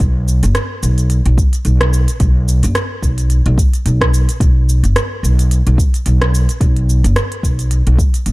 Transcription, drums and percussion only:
0.00 kick loud
0.00 closed hi-hat soft
0.00 shaker soft
0.28 shaker medium
0.43 closed hi-hat soft
0.43 shaker soft
0.55 cross-stick medium
0.55 closed hi-hat soft
0.55 shaker soft
0.83 shaker medium
0.98 closed hi-hat soft
0.98 shaker soft
1.10 closed hi-hat soft
1.10 shaker soft
1.26 closed hi-hat soft
1.38 kick loud
1.38 shaker medium
1.53 closed hi-hat soft
1.53 shaker soft
1.65 closed hi-hat soft
1.65 shaker soft
1.81 cross-stick medium
1.81 closed hi-hat soft
1.93 shaker medium
2.08 closed hi-hat soft
2.08 shaker soft
2.20 kick loud
2.20 closed hi-hat soft
2.20 shaker soft
2.48 shaker medium
2.63 closed hi-hat soft
2.63 shaker soft
2.75 cross-stick medium
2.75 closed hi-hat soft
2.75 shaker soft
3.03 kick medium
3.03 shaker medium
3.18 closed hi-hat soft
3.18 shaker soft
3.30 closed hi-hat medium
3.30 shaker soft
3.46 closed hi-hat soft
3.58 kick loud
3.58 shaker medium
3.73 closed hi-hat soft
3.73 shaker soft
3.86 closed hi-hat medium
3.86 shaker soft
4.01 kick medium
4.01 cross-stick medium
4.01 closed hi-hat soft
4.14 shaker medium
4.29 closed hi-hat soft
4.29 shaker soft
4.40 kick loud
4.40 closed hi-hat medium
4.40 shaker soft
4.69 shaker medium
4.84 closed hi-hat soft
4.84 shaker soft
4.96 cross-stick medium
4.96 closed hi-hat medium
4.96 shaker soft
5.24 shaker medium
5.39 closed hi-hat soft
5.39 shaker soft
5.51 closed hi-hat medium
5.51 shaker soft
5.67 closed hi-hat soft
5.78 kick medium
5.78 shaker medium
5.94 closed hi-hat soft
5.94 shaker soft
6.06 closed hi-hat medium
6.06 shaker soft
6.22 cross-stick medium
6.22 closed hi-hat soft
6.35 shaker medium
6.49 closed hi-hat soft
6.49 shaker soft
6.61 kick loud
6.61 closed hi-hat medium
6.61 shaker soft
6.76 closed hi-hat soft
6.89 shaker medium
7.04 closed hi-hat soft
7.04 shaker soft
7.16 cross-stick medium
7.16 closed hi-hat medium
7.16 shaker soft
7.32 closed hi-hat soft
7.43 kick medium
7.43 shaker medium
7.59 closed hi-hat soft
7.59 shaker soft
7.71 closed hi-hat medium
7.71 shaker soft
7.87 closed hi-hat soft
7.98 kick loud
7.98 shaker medium
8.14 closed hi-hat soft
8.14 shaker soft
8.26 closed hi-hat medium
8.26 shaker soft

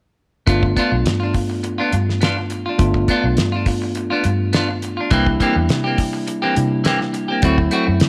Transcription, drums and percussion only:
0.47 kick loud
0.47 closed hi-hat medium
0.63 kick medium
0.77 kick medium
0.77 closed hi-hat medium
1.06 snare loud
1.06 closed hi-hat medium
1.34 kick medium
1.34 open hi-hat medium
1.64 closed hi-hat medium
1.92 closed hi-hat medium
2.09 snare soft
2.22 snare medium
2.22 closed hi-hat medium
2.50 closed hi-hat soft
2.79 kick loud
2.79 closed hi-hat medium
2.94 kick medium
3.08 kick medium
3.08 closed hi-hat soft
3.37 snare medium
3.37 closed hi-hat medium
3.66 kick medium
3.66 open hi-hat medium
3.95 closed hi-hat medium
4.24 closed hi-hat medium
4.53 snare medium
4.53 closed hi-hat medium
4.82 closed hi-hat soft
5.11 kick loud
5.11 closed hi-hat medium
5.26 kick medium
5.40 kick medium
5.40 closed hi-hat medium
5.69 snare medium
5.69 closed hi-hat medium
5.98 kick medium
5.98 open hi-hat medium
6.28 closed hi-hat medium
6.56 closed hi-hat medium
6.85 snare medium
6.85 closed hi-hat medium
7.01 snare soft
7.14 closed hi-hat medium
7.42 kick loud
7.42 closed hi-hat medium
7.58 kick medium
7.71 closed hi-hat medium
8.00 snare loud
8.00 closed hi-hat medium

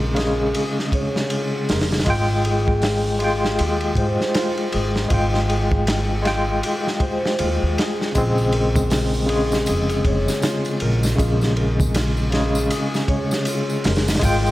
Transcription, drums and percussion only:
0.16 snare soft
0.16 ride medium
0.55 ride medium
0.79 snare soft
0.92 kick medium
0.92 ride medium
1.16 snare soft
1.30 ride medium
1.69 snare medium
1.69 open hi-hat medium
1.81 snare medium
1.81 open hi-hat medium
1.91 snare medium
1.91 open hi-hat medium
2.00 snare medium
2.00 open hi-hat soft
2.06 kick loud
2.06 ride medium
2.45 ride medium
2.68 kick medium
2.82 snare loud
2.82 open hi-hat medium
3.20 ride medium
3.45 snare soft
3.59 ride medium
3.81 ride soft
3.95 kick medium
3.95 ride medium
4.21 snare soft
4.34 snare loud
4.34 ride medium
4.57 ride soft
4.72 ride medium
4.96 snare soft
5.10 kick loud
5.10 ride medium
5.34 snare soft
5.50 ride medium
5.72 kick medium
5.87 snare loud
5.87 ride medium
6.25 snare soft
6.25 ride medium
6.63 ride medium
6.87 snare soft
7.00 kick medium
7.00 ride medium
7.26 snare soft
7.39 ride medium
7.78 snare loud
7.78 ride medium
8.01 snare soft
8.15 kick loud
8.15 ride medium
8.15 tambourine medium
8.38 tambourine soft
8.52 ride medium
8.76 kick loud
8.76 tambourine medium
8.76 low conga medium
8.90 snare loud
8.90 open hi-hat medium
8.90 tambourine medium
9.14 tambourine soft
9.29 ride medium
9.52 snare soft
9.52 tambourine medium
9.66 ride medium
9.66 tambourine medium
9.89 ride soft
9.89 tambourine soft
10.05 kick medium
10.05 ride medium
10.28 snare soft
10.28 tambourine medium
10.42 snare loud
10.42 ride medium
10.42 tambourine medium
10.65 ride soft
10.65 tambourine soft
10.80 ride medium
11.03 snare soft
11.03 tambourine medium
11.19 kick loud
11.19 ride medium
11.19 tambourine medium
11.41 snare soft
11.41 tambourine soft
11.57 ride medium
11.80 kick medium
11.80 tambourine medium
11.80 low conga medium
11.94 snare loud
11.94 ride medium
11.94 tambourine medium
12.17 tambourine soft
12.32 snare medium
12.32 ride medium
12.55 tambourine medium
12.71 ride medium
12.71 tambourine medium
12.94 snare soft
12.94 tambourine soft
13.08 kick medium
13.08 ride medium
13.31 snare soft
13.31 tambourine medium
13.45 ride medium
13.45 tambourine medium
13.70 tambourine soft
13.84 snare medium
13.84 open hi-hat medium
13.95 snare medium
13.95 open hi-hat medium
14.08 snare medium
14.08 open hi-hat medium
14.08 tambourine medium
14.14 snare medium
14.14 open hi-hat medium
14.21 kick loud
14.21 ride medium
14.21 tambourine medium
14.46 tambourine soft

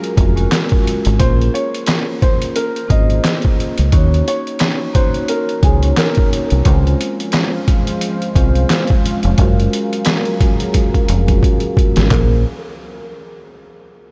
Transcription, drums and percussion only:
0.04 closed hi-hat soft
0.17 kick loud
0.17 closed hi-hat medium
0.37 closed hi-hat soft
0.52 snare loud
0.52 clap medium
0.52 closed hi-hat medium
0.69 kick medium
0.69 closed hi-hat soft
0.87 closed hi-hat medium
1.05 closed hi-hat medium
1.20 kick loud
1.20 closed hi-hat medium
1.41 closed hi-hat soft
1.55 closed hi-hat medium
1.74 closed hi-hat soft
1.86 snare loud
1.86 clap medium
1.86 closed hi-hat medium
2.22 kick loud
2.22 closed hi-hat medium
2.42 closed hi-hat medium
2.56 closed hi-hat loud
2.76 closed hi-hat soft
2.90 kick loud
2.90 closed hi-hat medium
3.10 closed hi-hat soft
3.24 snare loud
3.24 clap medium
3.24 closed hi-hat medium
3.42 kick medium
3.42 closed hi-hat soft
3.60 closed hi-hat medium
3.78 closed hi-hat medium
3.92 kick loud
3.92 closed hi-hat medium
4.14 closed hi-hat soft
4.28 closed hi-hat medium
4.47 closed hi-hat soft
4.59 snare loud
4.59 clap medium
4.59 closed hi-hat medium
4.95 kick loud
4.95 closed hi-hat medium
5.14 closed hi-hat medium
5.28 closed hi-hat loud
5.49 closed hi-hat soft
5.63 kick loud
5.63 closed hi-hat medium
5.83 closed hi-hat soft
5.97 snare loud
5.97 clap medium
5.97 closed hi-hat medium
6.15 kick medium
6.15 closed hi-hat soft
6.33 closed hi-hat medium
6.50 closed hi-hat medium
6.65 kick loud
6.65 closed hi-hat loud
6.87 closed hi-hat soft
7.01 closed hi-hat medium
7.20 closed hi-hat soft
7.32 snare loud
7.32 clap medium
7.32 closed hi-hat medium
7.68 kick loud
7.68 closed hi-hat medium
7.87 closed hi-hat medium
8.01 closed hi-hat loud
8.22 closed hi-hat soft
8.36 kick loud
8.36 closed hi-hat medium
8.55 closed hi-hat soft
8.70 snare loud
8.70 clap medium
8.70 closed hi-hat medium
8.87 kick medium
8.87 closed hi-hat soft
9.06 closed hi-hat medium
9.23 closed hi-hat medium
9.38 kick loud
9.38 closed hi-hat medium
9.60 closed hi-hat soft
9.73 closed hi-hat medium
9.93 closed hi-hat soft
10.05 snare loud
10.05 clap medium
10.05 closed hi-hat medium
10.25 closed hi-hat soft
10.40 kick loud
10.40 closed hi-hat medium
10.60 closed hi-hat medium
10.74 kick medium
10.74 closed hi-hat loud
10.94 kick medium
10.94 closed hi-hat soft
11.08 closed hi-hat medium
11.28 kick medium
11.28 closed hi-hat soft
11.43 kick medium
11.43 closed hi-hat medium
11.60 closed hi-hat soft
11.77 kick loud
11.77 closed hi-hat medium
11.96 snare loud
11.96 closed hi-hat medium
12.11 kick loud
12.11 clap medium
12.11 floor tom loud

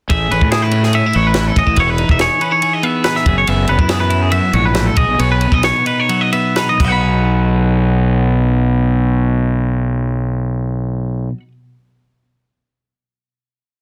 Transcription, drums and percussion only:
0.10 kick loud
0.10 ride medium
0.31 ride medium
0.41 kick medium
0.52 snare loud
0.52 ride medium
0.71 ride medium
0.83 snare soft
0.93 ride medium
1.13 ride medium
1.34 snare loud
1.34 ride medium
1.56 kick medium
1.56 ride medium
1.67 kick medium
1.76 kick medium
1.76 ride medium
1.98 ride medium
2.09 kick medium
2.19 snare loud
2.19 ride medium
2.41 ride medium
2.62 ride medium
2.83 ride medium
3.04 snare medium
3.04 ride medium
3.16 snare soft
3.26 kick medium
3.26 ride medium
3.47 ride medium
3.67 ride medium
3.79 kick medium
3.89 snare medium
3.89 ride medium
4.10 ride medium
4.31 ride medium
4.53 ride medium
4.75 snare medium
4.75 ride medium
4.96 kick medium
4.96 ride medium
5.19 ride medium
5.41 ride medium
5.52 kick medium
5.63 snare loud
5.63 ride medium
5.86 ride medium
6.09 ride medium
6.32 ride medium
6.56 snare medium
6.56 ride medium
6.80 kick loud
6.80 crash medium

